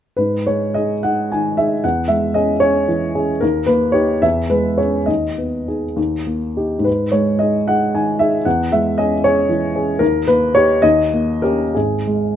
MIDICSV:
0, 0, Header, 1, 2, 480
1, 0, Start_track
1, 0, Key_signature, 5, "minor"
1, 0, Tempo, 561272
1, 157, Time_signature, 6, 3, 24, 8
1, 1115, Tempo, 534283
1, 3995, Tempo, 588235
1, 5915, Tempo, 548948
1, 6395, Tempo, 521739
1, 9275, Tempo, 571973
1, 9755, Tempo, 639659
1, 10690, End_track
2, 0, Start_track
2, 0, Title_t, "Upright piano"
2, 0, Program_c, 0, 0
2, 142, Note_on_c, 0, 71, 52
2, 157, Note_on_c, 0, 44, 36
2, 297, Control_c, 0, 64, 127
2, 392, Note_off_c, 0, 71, 0
2, 399, Note_on_c, 0, 73, 50
2, 407, Note_on_c, 0, 56, 32
2, 636, Note_on_c, 0, 75, 56
2, 639, Note_off_c, 0, 73, 0
2, 646, Note_on_c, 0, 68, 36
2, 648, Note_on_c, 0, 63, 29
2, 787, Note_off_c, 0, 56, 0
2, 859, Note_off_c, 0, 68, 0
2, 860, Note_off_c, 0, 63, 0
2, 877, Note_off_c, 0, 75, 0
2, 882, Note_on_c, 0, 78, 60
2, 892, Note_on_c, 0, 63, 30
2, 896, Note_on_c, 0, 68, 35
2, 1097, Note_off_c, 0, 63, 0
2, 1100, Note_off_c, 0, 68, 0
2, 1115, Note_off_c, 0, 78, 0
2, 1128, Note_on_c, 0, 80, 48
2, 1142, Note_on_c, 0, 51, 33
2, 1357, Note_on_c, 0, 76, 59
2, 1360, Note_off_c, 0, 80, 0
2, 1367, Note_on_c, 0, 68, 36
2, 1368, Note_on_c, 0, 63, 33
2, 1509, Note_off_c, 0, 51, 0
2, 1552, Note_off_c, 0, 44, 0
2, 1573, Note_off_c, 0, 63, 0
2, 1573, Note_off_c, 0, 68, 0
2, 1590, Note_off_c, 0, 76, 0
2, 1595, Note_on_c, 0, 78, 53
2, 1600, Note_on_c, 0, 40, 41
2, 1604, Control_c, 0, 64, 0
2, 1760, Control_c, 0, 64, 127
2, 1811, Note_on_c, 0, 76, 59
2, 1823, Note_on_c, 0, 56, 34
2, 1828, Note_off_c, 0, 78, 0
2, 2049, Note_on_c, 0, 75, 60
2, 2053, Note_off_c, 0, 76, 0
2, 2059, Note_on_c, 0, 68, 39
2, 2062, Note_on_c, 0, 61, 35
2, 2200, Note_off_c, 0, 56, 0
2, 2272, Note_off_c, 0, 68, 0
2, 2273, Note_off_c, 0, 61, 0
2, 2280, Note_on_c, 0, 73, 68
2, 2290, Note_off_c, 0, 75, 0
2, 2294, Note_on_c, 0, 61, 38
2, 2297, Note_on_c, 0, 68, 43
2, 2511, Note_off_c, 0, 61, 0
2, 2513, Note_off_c, 0, 68, 0
2, 2532, Note_on_c, 0, 52, 38
2, 2775, Note_on_c, 0, 68, 42
2, 2776, Note_on_c, 0, 61, 35
2, 2919, Note_off_c, 0, 52, 0
2, 2985, Note_off_c, 0, 40, 0
2, 2990, Note_off_c, 0, 61, 0
2, 2990, Note_off_c, 0, 68, 0
2, 3004, Note_on_c, 0, 70, 60
2, 3007, Note_off_c, 0, 73, 0
2, 3016, Note_on_c, 0, 39, 49
2, 3028, Control_c, 0, 64, 0
2, 3189, Control_c, 0, 64, 127
2, 3236, Note_on_c, 0, 71, 62
2, 3246, Note_off_c, 0, 70, 0
2, 3246, Note_on_c, 0, 58, 42
2, 3467, Note_on_c, 0, 73, 63
2, 3477, Note_on_c, 0, 63, 37
2, 3483, Note_on_c, 0, 67, 41
2, 3487, Note_off_c, 0, 71, 0
2, 3641, Note_off_c, 0, 58, 0
2, 3709, Note_off_c, 0, 63, 0
2, 3712, Note_off_c, 0, 67, 0
2, 3722, Note_off_c, 0, 39, 0
2, 3730, Note_off_c, 0, 73, 0
2, 3735, Note_on_c, 0, 76, 64
2, 3741, Note_on_c, 0, 40, 46
2, 3760, Control_c, 0, 64, 0
2, 3896, Control_c, 0, 64, 127
2, 3985, Note_on_c, 0, 71, 55
2, 3989, Note_off_c, 0, 76, 0
2, 3991, Note_on_c, 0, 56, 35
2, 4213, Note_on_c, 0, 73, 50
2, 4219, Note_off_c, 0, 71, 0
2, 4221, Note_on_c, 0, 61, 36
2, 4224, Note_on_c, 0, 68, 39
2, 4364, Note_off_c, 0, 56, 0
2, 4437, Note_off_c, 0, 61, 0
2, 4439, Note_off_c, 0, 68, 0
2, 4440, Note_off_c, 0, 40, 0
2, 4443, Note_on_c, 0, 75, 52
2, 4457, Note_off_c, 0, 73, 0
2, 4458, Note_on_c, 0, 39, 39
2, 4476, Control_c, 0, 64, 0
2, 4600, Control_c, 0, 64, 127
2, 4705, Note_on_c, 0, 59, 30
2, 4950, Note_on_c, 0, 63, 29
2, 4952, Note_on_c, 0, 68, 33
2, 5089, Note_off_c, 0, 59, 0
2, 5162, Note_off_c, 0, 39, 0
2, 5165, Note_off_c, 0, 63, 0
2, 5166, Note_off_c, 0, 68, 0
2, 5177, Note_off_c, 0, 75, 0
2, 5181, Note_on_c, 0, 39, 41
2, 5202, Control_c, 0, 64, 0
2, 5329, Control_c, 0, 64, 127
2, 5430, Note_on_c, 0, 58, 29
2, 5675, Note_on_c, 0, 63, 30
2, 5677, Note_on_c, 0, 67, 33
2, 5820, Note_off_c, 0, 58, 0
2, 5855, Note_on_c, 0, 44, 41
2, 5888, Note_off_c, 0, 63, 0
2, 5889, Note_off_c, 0, 39, 0
2, 5890, Note_off_c, 0, 67, 0
2, 5901, Note_on_c, 0, 71, 51
2, 5932, Control_c, 0, 64, 0
2, 6078, Control_c, 0, 64, 127
2, 6137, Note_on_c, 0, 73, 54
2, 6148, Note_off_c, 0, 71, 0
2, 6148, Note_on_c, 0, 56, 34
2, 6375, Note_on_c, 0, 75, 58
2, 6384, Note_on_c, 0, 63, 32
2, 6385, Note_off_c, 0, 73, 0
2, 6391, Note_on_c, 0, 68, 33
2, 6539, Note_off_c, 0, 56, 0
2, 6611, Note_off_c, 0, 63, 0
2, 6616, Note_off_c, 0, 68, 0
2, 6632, Note_off_c, 0, 75, 0
2, 6638, Note_on_c, 0, 78, 63
2, 6650, Note_on_c, 0, 63, 32
2, 6651, Note_on_c, 0, 68, 35
2, 6863, Note_off_c, 0, 63, 0
2, 6864, Note_off_c, 0, 68, 0
2, 6881, Note_off_c, 0, 78, 0
2, 6886, Note_on_c, 0, 80, 48
2, 6889, Note_on_c, 0, 51, 33
2, 7114, Note_on_c, 0, 76, 62
2, 7120, Note_off_c, 0, 80, 0
2, 7121, Note_on_c, 0, 63, 33
2, 7132, Note_on_c, 0, 68, 35
2, 7262, Note_off_c, 0, 51, 0
2, 7283, Note_off_c, 0, 44, 0
2, 7331, Note_off_c, 0, 63, 0
2, 7337, Note_off_c, 0, 68, 0
2, 7351, Note_off_c, 0, 76, 0
2, 7353, Note_on_c, 0, 78, 52
2, 7359, Note_on_c, 0, 40, 41
2, 7368, Control_c, 0, 64, 0
2, 7497, Control_c, 0, 64, 127
2, 7591, Note_off_c, 0, 78, 0
2, 7600, Note_on_c, 0, 76, 60
2, 7610, Note_on_c, 0, 56, 35
2, 7836, Note_off_c, 0, 76, 0
2, 7836, Note_on_c, 0, 75, 65
2, 7845, Note_on_c, 0, 61, 35
2, 7847, Note_on_c, 0, 68, 39
2, 7986, Note_off_c, 0, 56, 0
2, 8056, Note_off_c, 0, 61, 0
2, 8056, Note_off_c, 0, 68, 0
2, 8074, Note_off_c, 0, 75, 0
2, 8079, Note_on_c, 0, 73, 70
2, 8084, Note_on_c, 0, 61, 39
2, 8093, Note_on_c, 0, 68, 43
2, 8291, Note_off_c, 0, 61, 0
2, 8296, Note_off_c, 0, 68, 0
2, 8307, Note_on_c, 0, 52, 37
2, 8551, Note_on_c, 0, 61, 40
2, 8557, Note_on_c, 0, 68, 42
2, 8686, Note_off_c, 0, 52, 0
2, 8749, Note_off_c, 0, 40, 0
2, 8763, Note_off_c, 0, 61, 0
2, 8766, Note_off_c, 0, 68, 0
2, 8769, Note_on_c, 0, 70, 73
2, 8777, Note_on_c, 0, 39, 49
2, 8786, Note_off_c, 0, 73, 0
2, 8799, Control_c, 0, 64, 0
2, 8960, Control_c, 0, 64, 127
2, 9019, Note_off_c, 0, 70, 0
2, 9029, Note_on_c, 0, 71, 72
2, 9036, Note_on_c, 0, 58, 45
2, 9275, Note_off_c, 0, 71, 0
2, 9279, Note_on_c, 0, 73, 79
2, 9291, Note_on_c, 0, 63, 38
2, 9295, Note_on_c, 0, 67, 43
2, 9417, Note_off_c, 0, 58, 0
2, 9484, Note_off_c, 0, 39, 0
2, 9493, Note_off_c, 0, 63, 0
2, 9496, Note_off_c, 0, 67, 0
2, 9509, Note_on_c, 0, 75, 82
2, 9510, Note_off_c, 0, 73, 0
2, 9519, Note_on_c, 0, 39, 57
2, 9525, Control_c, 0, 64, 0
2, 9655, Control_c, 0, 64, 127
2, 9772, Note_on_c, 0, 58, 38
2, 9985, Note_off_c, 0, 75, 0
2, 9986, Note_on_c, 0, 70, 64
2, 9995, Note_on_c, 0, 61, 37
2, 9998, Note_on_c, 0, 67, 41
2, 10136, Note_off_c, 0, 58, 0
2, 10206, Note_off_c, 0, 61, 0
2, 10208, Note_off_c, 0, 67, 0
2, 10209, Note_off_c, 0, 39, 0
2, 10225, Note_off_c, 0, 70, 0
2, 10229, Note_on_c, 0, 68, 52
2, 10240, Control_c, 0, 64, 0
2, 10241, Note_on_c, 0, 32, 43
2, 10397, Control_c, 0, 64, 127
2, 10474, Note_on_c, 0, 56, 33
2, 10690, Note_off_c, 0, 32, 0
2, 10690, Note_off_c, 0, 56, 0
2, 10690, Note_off_c, 0, 68, 0
2, 10690, End_track
0, 0, End_of_file